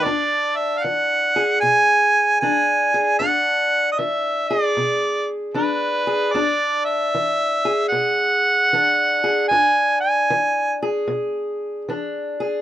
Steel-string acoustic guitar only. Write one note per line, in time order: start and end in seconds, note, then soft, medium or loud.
0.05 0.79 E2 medium
0.05 2.42 D4 medium
0.84 1.57 E3 medium
1.36 2.94 G#4 medium
1.63 2.36 B2 medium
2.42 3.15 E3 medium
2.42 3.20 D4 medium
2.94 3.24 G#4 medium
3.20 3.93 E2 medium
3.20 5.55 D4 medium
3.99 4.72 E3 medium
4.50 6.07 G#4 medium
4.77 5.50 B2 medium
5.54 6.29 E3 medium
5.54 6.35 D4 medium
6.07 6.38 G#4 medium
6.35 7.08 E2 medium
6.35 8.72 D4 medium
7.14 7.88 E3 medium
7.65 9.22 G#4 medium
7.92 8.66 B2 medium
8.73 9.46 E3 medium
8.73 9.48 D4 medium
9.24 9.47 G#4 medium
9.51 10.24 E2 medium
9.51 11.88 D4 medium
10.30 11.03 E3 medium
10.82 12.39 G#4 medium
11.08 11.81 B2 medium
11.89 12.61 E3 medium
11.89 12.62 D4 medium
12.40 12.62 G#4 medium